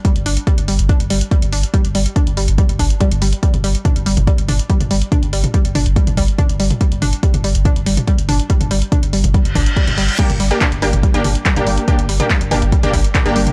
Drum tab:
CC |----------------|----------------|----------------|----------------|
HH |xxoxxxoxxxoxxxox|xxoxxxoxxxoxxxox|xxoxxxoxxxoxxxox|xxoxxxoxxxoxxxox|
CP |----------------|----------------|----------------|----------------|
T2 |----------------|----------------|-o--o--o--o--o--|o--o--o--o--o--o|
BD |o---o---o---o---|o---o---o-o-o---|o---o---o---o---|o---o---o-o-o---|

CC |----------------|----------------|x---------------|----------------|
HH |xxoxxxoxxxoxxxox|xxoxxxoxxxoxxxox|xxoxxxoxxxoxxxox|xxoxxxoxxxoxxxox|
CP |----------------|----------------|----x-------x---|----x-------x---|
T2 |--o--o--o--o--o-|-o--o--o--o--o--|-o--o--o--o--o--|o--o--o--o--o--o|
BD |o---o---o---o---|o---o---o-o-o---|o---o---o---o---|o---o---o-o-o---|